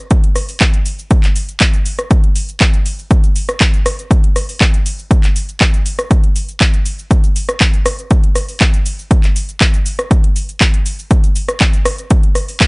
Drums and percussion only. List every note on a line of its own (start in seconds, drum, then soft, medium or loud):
0.11 kick loud
0.11 closed hi-hat medium
0.11 cabasa soft
0.24 closed hi-hat medium
0.36 cross-stick medium
0.36 open hi-hat loud
0.36 cabasa medium
0.49 open hi-hat medium
0.49 cabasa soft
0.60 kick loud
0.60 clap loud
0.60 closed hi-hat medium
0.60 cabasa soft
0.74 closed hi-hat medium
0.74 cabasa soft
0.86 open hi-hat loud
0.86 cabasa medium
0.99 cabasa soft
1.11 kick loud
1.11 closed hi-hat medium
1.11 cabasa soft
1.24 clap soft
1.24 closed hi-hat medium
1.24 cabasa soft
1.36 open hi-hat loud
1.36 cabasa medium
1.49 closed hi-hat soft
1.49 cabasa soft
1.60 kick loud
1.60 clap loud
1.60 closed hi-hat medium
1.60 cabasa soft
1.74 closed hi-hat medium
1.74 cabasa soft
1.86 open hi-hat loud
1.86 cabasa medium
1.99 cross-stick medium
1.99 closed hi-hat soft
1.99 cabasa soft
2.11 kick loud
2.11 closed hi-hat medium
2.11 cabasa soft
2.24 closed hi-hat medium
2.36 open hi-hat loud
2.36 cabasa medium
2.49 closed hi-hat soft
2.49 cabasa soft
2.60 kick loud
2.60 clap loud
2.60 closed hi-hat medium
2.60 cabasa soft
2.74 closed hi-hat medium
2.74 cabasa soft
2.86 open hi-hat loud
2.86 cabasa medium
2.99 cabasa soft
3.11 kick loud
3.11 closed hi-hat medium
3.11 cabasa soft
3.24 closed hi-hat medium
3.24 cabasa soft
3.36 open hi-hat loud
3.36 cabasa medium
3.49 cross-stick medium
3.49 closed hi-hat soft
3.49 cabasa soft
3.61 kick loud
3.61 clap loud
3.61 closed hi-hat medium
3.61 cabasa soft
3.74 closed hi-hat medium
3.74 cabasa soft
3.86 cross-stick medium
3.86 open hi-hat loud
3.86 cabasa medium
3.99 closed hi-hat soft
3.99 cabasa soft
4.11 kick loud
4.11 closed hi-hat medium
4.11 cabasa soft
4.24 closed hi-hat soft
4.36 cross-stick medium
4.36 open hi-hat loud
4.36 cabasa medium
4.49 open hi-hat medium
4.49 cabasa soft
4.61 kick loud
4.61 clap loud
4.61 closed hi-hat medium
4.61 cabasa soft
4.74 closed hi-hat medium
4.74 cabasa soft
4.86 open hi-hat loud
4.86 cabasa medium
4.99 cabasa soft
5.11 kick loud
5.11 closed hi-hat medium
5.11 cabasa soft
5.24 clap soft
5.24 closed hi-hat medium
5.24 cabasa soft
5.36 open hi-hat loud
5.36 cabasa medium
5.49 closed hi-hat soft
5.49 cabasa soft
5.61 kick loud
5.61 clap loud
5.61 closed hi-hat medium
5.61 cabasa soft
5.74 closed hi-hat medium
5.74 cabasa soft
5.86 open hi-hat loud
5.86 cabasa medium
5.99 cross-stick medium
5.99 closed hi-hat soft
5.99 cabasa soft
6.11 kick loud
6.11 closed hi-hat medium
6.11 cabasa soft
6.24 closed hi-hat soft
6.36 open hi-hat loud
6.36 cabasa medium
6.49 closed hi-hat soft
6.49 cabasa soft
6.61 kick loud
6.61 clap loud
6.61 closed hi-hat medium
6.61 cabasa soft
6.74 closed hi-hat soft
6.74 cabasa soft
6.86 open hi-hat loud
6.86 cabasa medium
6.99 cabasa soft
7.11 kick loud
7.11 closed hi-hat medium
7.11 cabasa soft
7.24 closed hi-hat medium
7.24 cabasa soft
7.36 open hi-hat loud
7.36 cabasa medium
7.49 cross-stick medium
7.49 closed hi-hat soft
7.49 cabasa soft
7.61 kick loud
7.61 clap loud
7.61 closed hi-hat medium
7.61 cabasa soft
7.74 closed hi-hat medium
7.74 cabasa soft
7.86 cross-stick medium
7.86 open hi-hat loud
7.86 cabasa medium
7.99 closed hi-hat soft
7.99 cabasa soft
8.11 kick loud
8.11 closed hi-hat medium
8.11 cabasa soft
8.24 closed hi-hat medium
8.36 cross-stick medium
8.36 open hi-hat loud
8.36 cabasa medium
8.49 open hi-hat medium
8.49 cabasa soft
8.60 kick loud
8.60 clap loud
8.60 closed hi-hat medium
8.60 cabasa soft
8.74 closed hi-hat medium
8.74 cabasa soft
8.86 open hi-hat loud
8.86 cabasa medium
8.99 cabasa soft
9.11 kick loud
9.11 closed hi-hat medium
9.11 cabasa soft
9.24 clap soft
9.24 closed hi-hat medium
9.24 cabasa soft
9.36 open hi-hat loud
9.36 cabasa medium
9.49 closed hi-hat soft
9.49 cabasa soft
9.61 kick loud
9.61 clap loud
9.61 closed hi-hat medium
9.61 cabasa soft
9.74 closed hi-hat medium
9.74 cabasa soft
9.86 open hi-hat loud
9.86 cabasa medium
9.99 cross-stick medium
9.99 closed hi-hat soft
9.99 cabasa soft
10.11 kick loud
10.11 closed hi-hat medium
10.11 cabasa soft
10.24 closed hi-hat medium
10.36 open hi-hat loud
10.36 cabasa medium
10.49 closed hi-hat soft
10.49 cabasa soft
10.61 kick loud
10.61 clap loud
10.61 closed hi-hat medium
10.61 cabasa soft
10.74 closed hi-hat medium
10.74 cabasa soft
10.86 open hi-hat loud
10.86 cabasa medium
10.99 cabasa soft
11.11 kick loud
11.11 closed hi-hat medium
11.11 cabasa soft
11.24 closed hi-hat medium
11.24 cabasa soft
11.36 open hi-hat loud
11.36 cabasa medium
11.49 cross-stick medium
11.49 closed hi-hat soft
11.49 cabasa soft
11.60 kick loud
11.60 clap loud
11.60 closed hi-hat medium
11.60 cabasa soft
11.73 closed hi-hat medium
11.73 cabasa soft
11.85 cross-stick medium
11.85 open hi-hat loud
11.85 cabasa medium
11.98 closed hi-hat soft
11.98 cabasa soft
12.10 kick loud
12.10 closed hi-hat medium
12.10 cabasa soft
12.23 closed hi-hat medium
12.35 cross-stick medium
12.35 open hi-hat loud
12.35 cabasa medium
12.48 open hi-hat medium
12.48 cabasa soft
12.60 kick loud
12.60 clap loud
12.60 closed hi-hat medium
12.60 cabasa soft